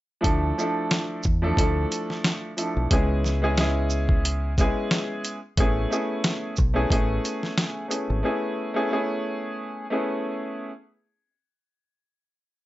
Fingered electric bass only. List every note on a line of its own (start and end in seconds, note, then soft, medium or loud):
0.24 0.51 D2 loud
1.25 1.52 E2 medium
1.57 1.84 D2 loud
2.77 2.88 B1 loud
2.91 4.72 C#2 loud
5.58 5.85 A1 loud
6.59 6.85 B1 medium
6.91 7.18 A1 loud
8.10 8.22 G#1 loud